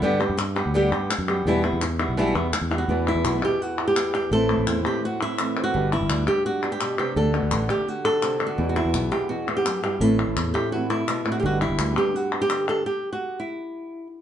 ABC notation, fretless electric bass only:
X:1
M:4/4
L:1/16
Q:1/4=168
K:Em
V:1 name="Fretless electric bass" clef=bass
G,,3 G,,4 D,,3 G,,2 z F,,3 | E,,3 E,,4 B,,,3 E,,2 z E,,3 | E,,3 E,, B,,,2 z8 z2 | A,,,3 A,,, E,,2 z8 z2 |
G,,,3 G,,, D,,2 z8 z2 | D,,3 D,, A,,,2 z8 z2 | E,,3 E,, B,,,2 z8 z2 | A,,,3 A,,, E,,2 z8 z2 |
G,,,3 G,,, D,,2 z8 z2 | z16 |]